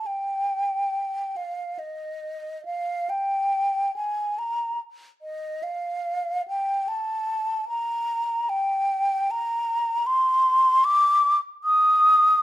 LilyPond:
\new Staff \with { instrumentName = "Flute" } { \time 3/4 \key g \minor \tempo 4 = 72 g''4. f''8 ees''4 | f''8 g''4 aes''8 bes''8 r8 | ees''8 f''4 g''8 a''4 | bes''4 g''4 bes''4 |
c'''4 d'''8 r8 ees'''4 | }